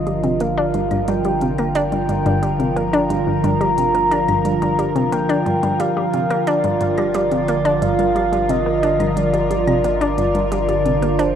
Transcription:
Already playing: G1 D3 F3 F4 A#4 D#5
0.07 G3, closed hi-hat
0.24 C3, closed hi-hat
0.40 A#3 F5, closed hi-hat
0.58 D4
0.74 G2, closed hi-hat
0.91 G2, closed hi-hat, claves
1.08 G2 G5, closed hi-hat
1.25 G3, closed hi-hat
1.41 C3, closed hi-hat
1.58 A#3, closed hi-hat, claves
1.75 D4 G5, closed hi-hat
1.92 G2, closed hi-hat
2.09 G2, closed hi-hat
2.26 G2, closed hi-hat
2.43 G3, closed hi-hat
2.59 C3, closed hi-hat
2.76 A#3 A#5, closed hi-hat
2.93 D4, closed hi-hat
3.10 G2, closed hi-hat
3.27 G2
3.44 G2, closed hi-hat
3.61 G3, closed hi-hat, claves
3.78 C3, closed hi-hat
3.95 A#3, closed hi-hat
4.11 D4, closed hi-hat, claves
4.28 G2, closed hi-hat, claves
4.45 G2, closed hi-hat
4.62 G2, closed hi-hat
4.79 G3, closed hi-hat
4.96 C3, closed hi-hat
5.12 A#3 G5, closed hi-hat
5.29 D4, closed hi-hat
5.46 G2, closed hi-hat
5.63 G2, closed hi-hat
5.80 G1 G3 F5, closed hi-hat
5.97 G3
6.14 C3, closed hi-hat
6.30 A#3, closed hi-hat, claves
6.47 D4 D5, closed hi-hat
6.64 G2, closed hi-hat
6.81 G2, closed hi-hat
6.98 G3, closed hi-hat, claves
7.14 G3 D5, closed hi-hat
7.32 C3, closed hi-hat
7.48 A#3, closed hi-hat
7.65 D4, closed hi-hat
7.82 G2 F5, closed hi-hat
7.99 G2, closed hi-hat
8.16 G3, closed hi-hat
8.32 G3, closed hi-hat
8.49 C3 D#5, closed hi-hat
8.66 A#3
8.83 D4, closed hi-hat
9.00 G2, closed hi-hat, claves
9.17 G2 D5, closed hi-hat
9.34 G3, closed hi-hat
9.51 G3, closed hi-hat
9.67 C3, closed hi-hat, claves
9.84 A#3 D5, closed hi-hat
10.01 D4, closed hi-hat
10.18 G2, closed hi-hat
10.35 G2, closed hi-hat
10.52 G3 D5, closed hi-hat
10.69 G3, closed hi-hat
10.86 C3, closed hi-hat
11.02 A#3, closed hi-hat
11.19 D4 C5, closed hi-hat

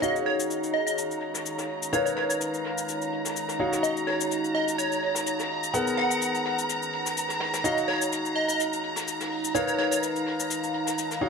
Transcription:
Already playing: D#4 G#4 C#5
0.02 D#4 F#4 C#5 D#5 F5 A#5, closed hi-hat, shaker
0.15 closed hi-hat, shaker
0.26 C#5, snare, closed hi-hat
0.40 shaker
0.50 closed hi-hat, shaker
0.63 shaker
0.74 D#5, closed hi-hat
0.87 D#5 F5, closed hi-hat, shaker
0.98 closed hi-hat, shaker
1.10 closed hi-hat, shaker
1.21 closed hi-hat
1.34 snare, shaker
1.45 closed hi-hat, shaker
1.58 snare, shaker
1.69 open hi-hat
1.83 shaker
1.93 D#4 A#4 B4 C#5 F5, closed hi-hat, shaker
2.06 C#5, shaker
2.16 C#5, snare, closed hi-hat
2.29 C#5, shaker
2.41 closed hi-hat, shaker
2.53 closed hi-hat, shaker
2.64 snare, closed hi-hat
2.78 shaker
2.89 closed hi-hat, shaker
3.02 shaker
3.12 closed hi-hat
3.25 snare, shaker
3.36 closed hi-hat, shaker
3.48 snare, shaker
3.59 D#4 F#4 C#5 F5, closed hi-hat
3.72 snare, shaker
3.83 D#5, closed hi-hat, shaker
3.96 closed hi-hat, shaker
4.07 C#5, snare, closed hi-hat
4.21 shaker
4.30 closed hi-hat, shaker
4.44 shaker
4.55 D#5, closed hi-hat
4.68 closed hi-hat, shaker
4.78 C#5, closed hi-hat, shaker
4.92 closed hi-hat, shaker
5.03 closed hi-hat
5.15 snare, shaker
5.26 closed hi-hat, shaker
5.39 snare, shaker
5.50 open hi-hat
5.63 shaker
5.73 B3 G#4 A#4 F#5, closed hi-hat, shaker
5.87 shaker
5.97 F#5, snare, closed hi-hat
6.10 F#5, shaker
6.20 closed hi-hat, shaker
6.33 closed hi-hat, shaker
6.45 snare, closed hi-hat
6.59 F#5, shaker
6.69 closed hi-hat, shaker
6.82 shaker
6.93 closed hi-hat
7.05 snare, shaker
7.17 closed hi-hat, shaker
7.29 snare, shaker
7.40 snare, closed hi-hat
7.53 snare, closed hi-hat, shaker
7.64 D#4 F#4 C#5 D#5 F5, closed hi-hat, shaker
7.77 closed hi-hat, shaker
7.88 C#5, snare, closed hi-hat
8.02 shaker
8.12 closed hi-hat, shaker
8.25 shaker
8.36 D#5, closed hi-hat
8.48 D#5 F5, closed hi-hat, shaker
8.60 closed hi-hat, shaker
8.73 closed hi-hat, shaker
8.83 closed hi-hat
8.96 snare, shaker
9.07 closed hi-hat, shaker
9.20 snare, shaker
9.32 open hi-hat
9.44 shaker
9.54 D#4 A#4 B4 C#5 F5, closed hi-hat, shaker
9.67 C#5, shaker
9.78 C#5, snare, closed hi-hat
9.91 C#5, shaker
10.03 closed hi-hat, shaker
10.16 closed hi-hat, shaker
10.26 snare, closed hi-hat
10.40 shaker
10.50 closed hi-hat, shaker
10.64 shaker
10.74 closed hi-hat
10.86 snare, shaker
10.98 closed hi-hat, shaker
11.11 snare, shaker
11.21 D#4 F#4 C#5 F5, closed hi-hat

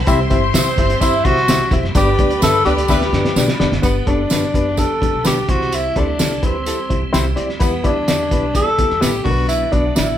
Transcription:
Already playing: E3
0.07 C2 C3 G3 C4 E4 G4 C5 E5 C6, kick, closed hi-hat, tambourine
0.30 G1 C4 E4 G4 C5 E5, kick, closed hi-hat
0.54 C3 C4 E4 G4 C5 E5, snare, closed hi-hat, tambourine
0.67 snare
0.78 G1 C4 E4 G4 C5 E5, kick, closed hi-hat
0.90 closed hi-hat
1.01 G1 C4 E4 G4 C5 E5, kick, closed hi-hat, tambourine
1.25 C3 C4 E4 F#4 G4 C5 E5, kick, closed hi-hat
1.37 snare
1.48 C2 C4 E4 G4 C5 E5, snare, closed hi-hat, tambourine
1.71 E1 C4 E4 G4 C5 E5, kick, closed hi-hat
1.83 F#1, snare
1.94 G1 G2 D3 B3 D4 G4 B4 D5 B5, kick, closed hi-hat, tambourine
2.19 D2 B3 D4 G4 B4 D5, kick, closed hi-hat
2.31 closed hi-hat
2.42 G2 B3 D4 G4 A4 B4 E5, snare, closed hi-hat, tambourine
2.54 snare
2.65 D2 G3 B3 D4 G4 B4 D5, closed hi-hat
2.78 closed hi-hat
2.88 D2 G3 B3 D4 G4 B4 E5, kick, snare, tambourine
3.01 snare
3.13 G2 B3 D4 G4 B4 D5, snare
3.25 snare
3.36 B2 B3 D4 G4 B4 D5, snare, tambourine
3.48 snare
3.60 E1 B3 D4 G4 B4 D5, snare
3.72 F#1, snare
3.82 G1 G2 D3 G3 B3 D4 G4 B4, kick, closed hi-hat, tambourine
4.07 F#1 B3 D4 G4 A4, kick, closed hi-hat
4.30 G1 B3 D4 G4 B4, snare, closed hi-hat, tambourine
4.43 snare
4.54 F#1 B3 D4 G4 B4, kick, closed hi-hat
4.77 B3 D4 G4 A4, kick, closed hi-hat, tambourine
5.01 A1 B3 D4 G4 A4, kick, closed hi-hat
5.13 B1
5.24 B1 B3 D4 G4 B4, snare, closed hi-hat, tambourine
5.48 C2 C3 E3 C4 E4 F#4 G4 C5, kick, closed hi-hat
5.61 snare
5.72 E4, closed hi-hat, tambourine
5.96 D2 C4 D4 E4 G4 A4, kick, closed hi-hat
6.19 C2 C4 E4 G4 A4, snare, closed hi-hat, tambourine
6.32 snare
6.42 D2 C4 E4 G4 B4, kick, closed hi-hat
6.66 C4 E4 G4 A4, closed hi-hat, tambourine
6.89 C2 C4 E4 G4 C5, kick, closed hi-hat
7.01 E2
7.12 C2 C4 E4 G4 C5, snare, closed hi-hat, tambourine
7.36 D2 C4 E4 G4 D5, closed hi-hat
7.49 snare
7.60 E2 E3 B3 E4 G4 B4, kick, closed hi-hat, tambourine
7.84 D2 B3 D4 E4 G4 D5, kick, closed hi-hat
8.08 E2 B3 E4 G4 D5, snare, closed hi-hat, tambourine
8.31 B1 B3 E4 G4 B4, kick, closed hi-hat
8.54 B3 E4 G4 A4 D5, kick, closed hi-hat, tambourine
8.78 D2 B3 E4 G4 A4, kick, closed hi-hat
8.90 E2, snare
9.00 A1 B3 E4 G4 B4, snare, closed hi-hat, tambourine
9.24 B1 B2 D3 F#3 B3 D4 F#4 A#4, kick, open hi-hat
9.31 B4
9.48 E4, closed hi-hat, tambourine
9.72 B1 B3 D4 F#4 D5, kick, closed hi-hat
9.96 A1 B3 D4 E4 F#4 D5, snare, closed hi-hat, tambourine

